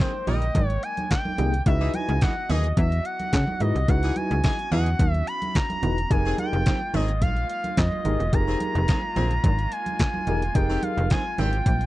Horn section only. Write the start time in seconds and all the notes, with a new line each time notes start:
0.00 D#3 C4 G#4
0.27 G3 D#4 A#4
1.81 E3 D#4 G#4
2.22 E3 D#4 G#4
2.50 E3 D#4 G#4
4.03 E3 D#4 G#4
4.44 E3 D#4 G#4
4.72 E3 D#4 G#4
6.25 D#3 C4 G#4
6.66 D#3 C4 G4
6.94 D#3 C4 G#4
8.48 D#3 C4 G#4
8.88 D#3 C4 G#4
9.16 D#3 C4 G#4
10.70 D#3 C4 G4
11.11 D#3 C4 G#4
11.39 D#3 C4 G4